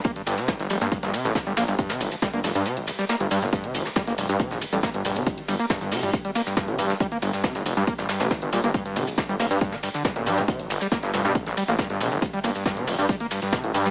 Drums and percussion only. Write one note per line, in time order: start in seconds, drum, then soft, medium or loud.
0.04 kick loud
0.04 closed hi-hat loud
0.04 closed hi-hat medium
0.04 shaker soft
0.16 closed hi-hat medium
0.26 closed hi-hat medium
0.26 open hi-hat loud
0.26 ride medium
0.26 shaker medium
0.38 snare soft
0.38 closed hi-hat medium
0.38 shaker soft
0.48 kick loud
0.48 snare loud
0.48 closed hi-hat loud
0.48 closed hi-hat medium
0.48 shaker soft
0.60 snare soft
0.60 closed hi-hat medium
0.69 closed hi-hat medium
0.69 open hi-hat loud
0.69 ride medium
0.69 shaker medium
0.81 closed hi-hat medium
0.81 shaker soft
0.92 kick loud
0.92 closed hi-hat loud
0.92 closed hi-hat medium
0.92 shaker soft
1.03 snare medium
1.03 closed hi-hat medium
1.13 closed hi-hat medium
1.13 open hi-hat loud
1.13 ride medium
1.13 shaker medium
1.25 closed hi-hat medium
1.25 shaker soft
1.35 kick loud
1.35 snare loud
1.35 closed hi-hat medium
1.35 closed hi-hat loud
1.35 shaker soft
1.47 closed hi-hat medium
1.57 snare loud
1.57 closed hi-hat medium
1.57 open hi-hat loud
1.57 ride medium
1.57 shaker medium
1.68 closed hi-hat soft
1.68 shaker soft
1.78 kick loud
1.78 closed hi-hat medium
1.78 shaker soft
1.89 snare loud
1.89 closed hi-hat medium
2.01 open hi-hat loud
2.01 ride medium
2.01 shaker medium
2.12 closed hi-hat medium
2.12 shaker soft
2.22 kick loud
2.22 snare loud
2.22 closed hi-hat medium
2.22 closed hi-hat loud
2.22 shaker soft
2.33 closed hi-hat soft
2.33 closed hi-hat medium
2.44 snare medium
2.44 open hi-hat medium
2.44 open hi-hat loud
2.44 ride medium
2.44 shaker medium
2.55 closed hi-hat medium
2.55 shaker soft
2.66 closed hi-hat loud
2.66 closed hi-hat medium
2.66 shaker soft
2.77 closed hi-hat medium
2.87 snare soft
2.87 closed hi-hat medium
2.87 open hi-hat loud
2.87 ride medium
2.87 shaker medium
2.99 snare soft
2.99 closed hi-hat medium
2.99 shaker soft
3.09 snare loud
3.09 closed hi-hat medium
3.09 closed hi-hat loud
3.09 shaker soft
3.20 closed hi-hat medium
3.31 closed hi-hat medium
3.31 open hi-hat loud
3.31 ride medium
3.31 shaker medium
3.42 snare medium
3.42 closed hi-hat medium
3.42 shaker soft
3.53 kick loud
3.53 closed hi-hat medium
3.53 shaker soft
3.64 closed hi-hat medium
3.75 closed hi-hat medium
3.75 open hi-hat loud
3.75 ride medium
3.75 shaker medium
3.85 snare medium
3.85 closed hi-hat medium
3.85 shaker soft
3.96 kick loud
3.96 snare loud
3.96 closed hi-hat medium
3.96 closed hi-hat loud
3.96 shaker soft
4.07 snare soft
4.07 closed hi-hat medium
4.18 closed hi-hat medium
4.18 open hi-hat loud
4.18 ride medium
4.18 shaker medium
4.29 closed hi-hat medium
4.29 shaker soft
4.39 kick loud
4.39 closed hi-hat medium
4.39 closed hi-hat loud
4.39 shaker soft
4.51 snare soft
4.51 closed hi-hat medium
4.61 closed hi-hat medium
4.61 open hi-hat loud
4.61 ride medium
4.61 shaker medium
4.73 closed hi-hat medium
4.73 shaker soft
4.83 kick loud
4.83 snare loud
4.83 closed hi-hat loud
4.83 closed hi-hat medium
4.83 shaker soft
4.94 closed hi-hat medium
5.05 closed hi-hat medium
5.05 open hi-hat loud
5.05 ride medium
5.05 shaker medium
5.16 closed hi-hat medium
5.16 shaker soft
5.26 kick loud
5.26 closed hi-hat loud
5.26 closed hi-hat medium
5.26 shaker soft
5.38 closed hi-hat medium
5.48 closed hi-hat medium
5.48 open hi-hat loud
5.48 ride medium
5.48 shaker medium
5.59 closed hi-hat medium
5.59 shaker soft
5.70 kick loud
5.70 snare loud
5.70 closed hi-hat medium
5.70 closed hi-hat loud
5.70 shaker soft
5.81 closed hi-hat medium
5.81 closed hi-hat soft
5.92 snare medium
5.92 open hi-hat loud
5.92 open hi-hat medium
5.92 ride medium
5.92 shaker medium
6.03 closed hi-hat medium
6.03 shaker soft
6.13 kick loud
6.13 closed hi-hat loud
6.13 closed hi-hat medium
6.13 shaker soft
6.25 closed hi-hat medium
6.35 snare medium
6.35 closed hi-hat medium
6.35 open hi-hat loud
6.35 ride medium
6.35 shaker medium
6.46 snare soft
6.46 closed hi-hat medium
6.46 shaker soft
6.57 kick loud
6.57 snare loud
6.57 closed hi-hat medium
6.57 closed hi-hat loud
6.57 shaker soft
6.68 closed hi-hat medium
6.79 closed hi-hat medium
6.79 open hi-hat loud
6.79 ride medium
6.79 shaker medium
6.90 snare medium
6.90 closed hi-hat medium
6.90 shaker soft
7.00 kick loud
7.00 closed hi-hat loud
7.00 closed hi-hat medium
7.00 shaker soft
7.12 closed hi-hat medium
7.22 closed hi-hat medium
7.22 open hi-hat loud
7.22 ride medium
7.22 shaker medium
7.33 snare soft
7.33 closed hi-hat medium
7.33 shaker soft
7.44 kick loud
7.44 snare loud
7.44 closed hi-hat loud
7.44 shaker soft
7.55 snare soft
7.55 closed hi-hat medium
7.66 closed hi-hat medium
7.66 open hi-hat loud
7.66 ride medium
7.66 shaker medium
7.77 closed hi-hat medium
7.77 shaker soft
7.87 kick loud
7.87 closed hi-hat medium
7.87 closed hi-hat loud
7.87 shaker soft
7.98 snare medium
7.98 closed hi-hat medium
8.09 snare loud
8.09 closed hi-hat medium
8.09 open hi-hat loud
8.09 ride medium
8.09 shaker medium
8.20 snare loud
8.20 closed hi-hat medium
8.20 shaker soft
8.31 kick loud
8.31 snare loud
8.31 closed hi-hat medium
8.31 closed hi-hat loud
8.31 shaker soft
8.42 closed hi-hat medium
8.52 closed hi-hat medium
8.52 open hi-hat loud
8.52 ride medium
8.52 shaker medium
8.64 closed hi-hat medium
8.64 shaker soft
8.74 kick loud
8.74 closed hi-hat medium
8.74 shaker soft
8.86 closed hi-hat medium
8.96 closed hi-hat medium
8.96 open hi-hat loud
8.96 ride medium
8.96 shaker medium
9.07 closed hi-hat medium
9.07 shaker soft
9.18 kick loud
9.18 snare loud
9.18 closed hi-hat loud
9.18 closed hi-hat medium
9.18 shaker soft
9.29 closed hi-hat soft
9.29 closed hi-hat medium
9.39 snare medium
9.39 open hi-hat medium
9.39 open hi-hat loud
9.39 ride medium
9.39 shaker medium
9.51 closed hi-hat medium
9.51 shaker soft
9.61 kick loud
9.61 closed hi-hat medium
9.61 shaker soft
9.72 snare medium
9.72 closed hi-hat medium
9.83 snare medium
9.83 closed hi-hat medium
9.83 open hi-hat loud
9.83 ride medium
9.83 shaker medium
9.94 snare soft
9.94 closed hi-hat medium
9.94 shaker soft
10.05 kick loud
10.05 snare loud
10.05 closed hi-hat medium
10.05 shaker soft
10.16 closed hi-hat medium
10.26 closed hi-hat medium
10.26 open hi-hat loud
10.26 ride medium
10.26 shaker medium
10.37 snare medium
10.37 closed hi-hat medium
10.37 shaker soft
10.48 kick loud
10.48 closed hi-hat medium
10.48 shaker soft
10.60 closed hi-hat medium
10.70 closed hi-hat medium
10.70 open hi-hat loud
10.70 ride medium
10.70 shaker medium
10.81 snare medium
10.81 closed hi-hat medium
10.81 shaker soft
10.92 kick loud
10.92 snare loud
10.92 closed hi-hat medium
10.92 shaker soft
11.03 snare soft
11.03 closed hi-hat soft
11.13 closed hi-hat medium
11.13 open hi-hat loud
11.13 ride medium
11.13 shaker medium
11.25 closed hi-hat medium
11.25 shaker soft
11.35 kick loud
11.35 closed hi-hat medium
11.35 shaker soft
11.46 snare soft
11.46 closed hi-hat medium
11.57 closed hi-hat medium
11.57 open hi-hat loud
11.57 ride medium
11.57 shaker medium
11.68 closed hi-hat medium
11.68 shaker soft
11.79 kick loud
11.79 snare loud
11.79 closed hi-hat medium
11.79 shaker soft
11.90 closed hi-hat medium
12.01 closed hi-hat medium
12.01 open hi-hat loud
12.01 ride medium
12.01 shaker medium
12.12 closed hi-hat soft
12.12 shaker soft
12.22 kick loud
12.22 closed hi-hat medium
12.22 shaker soft
12.34 closed hi-hat medium
12.43 closed hi-hat medium
12.43 open hi-hat loud
12.43 ride medium
12.43 shaker medium
12.55 closed hi-hat medium
12.55 shaker soft
12.66 kick loud
12.66 snare loud
12.66 closed hi-hat medium
12.66 shaker soft
12.77 closed hi-hat medium
12.77 closed hi-hat soft
12.87 snare medium
12.87 open hi-hat loud
12.87 open hi-hat medium
12.87 ride medium
12.87 shaker medium
12.99 closed hi-hat medium
12.99 shaker soft
13.09 kick loud
13.09 closed hi-hat medium
13.09 shaker soft
13.20 closed hi-hat medium
13.31 snare soft
13.31 closed hi-hat medium
13.31 open hi-hat loud
13.31 ride medium
13.31 shaker medium
13.42 snare soft
13.42 closed hi-hat medium
13.42 shaker soft
13.53 kick loud
13.53 snare loud
13.53 closed hi-hat medium
13.53 shaker soft
13.64 closed hi-hat soft
13.74 closed hi-hat medium
13.74 open hi-hat loud
13.74 ride medium
13.74 shaker medium
13.85 snare medium
13.85 closed hi-hat soft
13.85 shaker soft